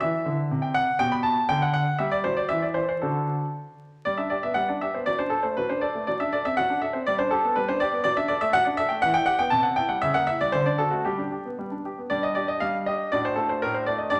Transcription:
0.00 E3 E4 E5
0.25 D3
0.51 C3
0.62 G5
0.74 F#5
0.99 B2 G4 G5
1.12 B5
1.23 A5
1.49 D3 G5
1.62 F#5
1.73 F#5
1.98 G3 G4 E5
2.11 D5
2.24 F#3 C5
2.37 D5
2.49 E3 E5
2.62 D5
2.74 E3 C5
2.89 C5
3.02 D3 D4 F#4 A4
4.05 G3 D5
4.17 D4 E5
4.30 G4 D5
4.43 B3 E5
4.54 G3 F#5
4.68 D4 D5
4.81 G4 E5
4.94 B3 C5
5.06 F#3 D5
5.19 D4 C5
5.30 A4
5.43 A3 C5
5.57 F#3 B4
5.69 D4 C5
5.81 A4 D5
5.95 A3
6.07 F#3 D5
6.20 D4 E5
6.33 A4 D5
6.45 C4 E5
6.57 F#3 F#5
6.70 D4
6.82 A4 E5
6.93 C4 C5
7.07 G3 D5
7.19 D4 C5
7.31 G4 A4
7.44 B3
7.55 G3 B4
7.68 D4 C5
7.80 G4 D5
7.93 B3
8.04 F#3 D5
8.17 D4 E5
8.28 A4 D5
8.41 A3 E5
8.53 F#3 F#5
8.65 D4 D5
8.77 A4 E5
8.89 A3 G5
9.02 E3 F#5
9.14 E4 G5
9.26 G4 F#5
9.39 B3 G5
9.50 C3 A5
9.63 C4 F#5
9.76 E4 G5
9.89 G3 F#5
10.02 C#3 E5
10.14 A#3 F#5
10.27 E4 E5
10.41 G3 D5
10.52 D3 C5
10.66 D4 D5
10.78 F#4 A4
10.91 A3 F#4
11.05 G3 G4
11.18 D4
11.32 G4
11.45 B3
11.59 G3
11.72 D4
11.85 G4
11.98 B3
12.10 G3 D4 G4 D5
12.23 D#5
12.35 G4 D5
12.48 D#5
12.60 G3 F5
12.86 G4 D#5
13.12 A2 D4 F#4 D5
13.25 C5
13.36 A3 A4
13.49 C5
13.62 A2 A#4
13.74 C5
13.87 A3 D5
13.98 D#5
14.10 G2 D4 G4 D5

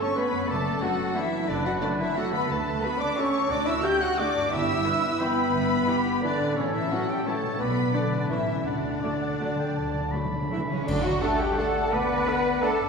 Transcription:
Already playing: G2 C#4 E4 A4
0.00 C#4 C#5 C#6
0.15 A3 B3 C#4 B4 C#5 B5
0.32 F#2
0.36 D4
0.40 F#4
0.45 A3 A4
0.49 F#1 A3 D5 A5
0.81 F#3 A3 D4 F#4 A4 F#5
1.15 E3 A3 D4 E4 E5
1.48 F#1 D3 D4 B4 D5
1.65 F#3 F#4 F#5
1.81 D3 A3 D4 D5
2.00 E3 E4 E5
2.17 F#3 A3 D4 F#4 A4 F#5
2.32 D3 B3 B4 B5
2.36 D4
2.41 F#4
2.45 A3 A4
2.50 D2 A3 A4 B4 A5
2.81 A3 B3 F#4 B4 B5
2.98 D4 D5 D6
3.16 A3 C#4 F#4 A4 C#5 C#6
3.49 D2 D4 F#4 D5 D6
3.65 E4 E5 E6
3.83 A3 F#4 G4 G5 G6
4.01 F#4 F#5 F#6
4.17 A3 D4 F#4 D5 D6
4.35 G2
4.39 B3
4.44 E4
4.52 G1 E4 G4 E5 E6
4.86 E3 E4 B4
5.21 E3 B3 E4 B4 G5 B5
5.54 G1 E5
5.88 E3 E4 G4
6.22 D3 E3 D4 E4 B4 D5
6.39 A2
6.44 C#4
6.48 E4
6.53 A2 C#3 A4
6.57 A1 C#3 C#4 C#5
6.72 E3 E4 E5
6.89 E3 F#3 C#4 F#4 F#5
7.08 G3 G4 G5
7.23 E3 A3 C#4 A4 C#5 A5
7.28 A5
7.42 B2
7.46 B3
7.51 D4
7.55 B3 F#4
7.60 B1 B3 B4 D5 B5
7.93 D3 D4 B4 D5
8.12 A2
8.17 C#4
8.21 E4
8.26 E4 A4
8.30 A1 E3 C#4 E4 E5
8.48 D3
8.52 D4
8.57 F#4
8.61 D4 A4
8.66 D2 D3 D4 D5 F#5
8.73 D3
8.81 D3
8.89 D3
8.97 D3
9.02 D3 F#3 A3 D5
9.21 D3 F#5
9.31 D3
9.39 D3 F#3 A3
9.47 D3
9.56 D3 G5
9.71 D3
9.76 D2 D3 A5
9.85 D3
9.94 D3
10.00 D3
10.08 D3 B5
10.13 D3 F#3 A3
10.25 D3
10.32 D3
10.41 D3
10.49 D3 E3 F#3 A3 E4 E5
10.57 D3
10.65 D3
10.70 C#3 D3 C#4 C#5
10.74 D4
10.79 F#4
10.84 D4 A4 D5
10.88 D2 D3 F#5, concert bass drum, crash
11.04 F#3 F#4 F#5
11.22 A3 D4 A4 D5 F#5 A5
11.40 G3 G4 G5
11.58 A3 D4 A4 D5 F#5 A5
11.91 D2 B3 B4 D5 B5
12.26 D4 A4 D5 F#5
12.62 A3 D4 A4 D5 F#5 A5
12.79 G2
12.84 D4

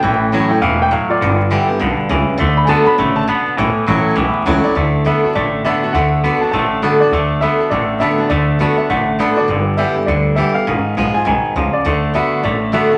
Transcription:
Already playing: G5
0.03 A1 A2 E3
0.32 A2 E3 F#3 A3 C#4 E4
0.50 C#4 E4 G5, muted upright bass stroke
0.61 E1 A2 B2 E3 F5
0.82 G5
0.91 A2 F#3 F5
1.10 F4 D5, muted upright bass stroke
1.21 G1 G2 D3
1.50 G2 D3 E3 G3 B3 G4
1.68 B3 G4, muted upright bass stroke
1.79 B1 G2 B2 D3
1.99 muted upright bass stroke
2.09 C#2 G2 C#3 E3
2.29 muted upright bass stroke
2.38 D2 D3 A3
2.57 B5
2.64 D3 A3 D4 F#4 G#5
2.69 D3 B3 A5
2.82 F#4 A#5
2.87 D4 B5, muted upright bass stroke
2.98 A1 C#3 D3 A3
3.16 A5
3.28 B2 D3 B3
3.47 muted upright bass stroke
3.57 A1 A2 E3
3.76 muted upright bass stroke
3.86 A1 A2 E3 F#3 A3 C#4 E4
4.05 muted upright bass stroke
4.16 B1 E2 A2 E3
4.35 muted upright bass stroke
4.45 C#2 A2 E3 F#3 A3 C#4 E4
4.63 C#4 E4 D5, muted upright bass stroke
4.75 D2 D3 A3
5.05 D3 A3 B3 D4 F#4 E5
5.24 D4 F#4, muted upright bass stroke
5.35 A1 A2 D3 A3 D5
5.64 D3 A3 B3 D4 F#4 E5
5.83 D4 F#4, muted upright bass stroke
5.93 D2 D3 A3 F#5
6.24 D3 A3 B3 D4 F#4
6.41 D4 F#4 A5, muted upright bass stroke
6.51 A1 A2 D3 A3 A5
6.82 D3 A3 B3 D4 F#4
7.00 D4 F#4 D5, muted upright bass stroke
7.11 D2 D3 A3
7.41 D3 A3 B3 D4 F#4 E5
7.60 D4 F#4, muted upright bass stroke
7.70 A1 A2 D3 A3 D5
8.00 D3 A3 B3 D4 F#4 E5
8.18 D4 F#4, muted upright bass stroke
8.29 D2 D3 A3 D5
8.59 D3 A3 B3 D4 F#4
8.77 D4 F#4 E5, muted upright bass stroke
8.89 A1 A2 D3 A3 F#5
9.19 D3 A3 B3 D4 F#4
9.36 D4 F#4 D5, muted upright bass stroke
9.48 G1 G2 D3
9.77 G2 D3 E3 G3 B3 G4 E5
9.96 B3 G4, muted upright bass stroke
10.06 D2 G2 D3 D5
10.36 G2 D3 E3 G3 B3 G4 E5
10.54 B3 G4 F5, muted upright bass stroke
10.67 G#1 G#2 D#3
10.86 muted upright bass stroke
10.97 A#1 G#2 F3 G#3 B3 F4 G#4
11.14 F4 G#4 G#5
11.25 B1 G#2 B2 D#3 G#5
11.44 muted upright bass stroke
11.56 C#2 G#2 C#3 F3
11.73 D5, muted upright bass stroke
11.85 D2 D3 A3
12.14 D3 A3 B3 D4 F#4 E5
12.33 muted upright bass stroke
12.43 A1 A2 D3 A3 D5
12.72 D3 A3 B3 D4 F#4 E5
12.91 D4 F#4 F#5, muted upright bass stroke

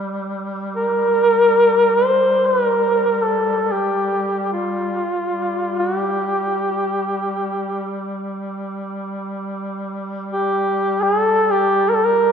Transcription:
Already playing: G3
0.77 A#4
2.04 C5
2.46 B4
2.66 A#4
3.22 A4
3.71 G4
4.53 F4
5.25 G3
5.79 F#4
5.98 G4
10.32 G4
11.03 G#4
11.21 A4
11.51 G4
11.89 A#4
11.95 A4
12.05 A#4

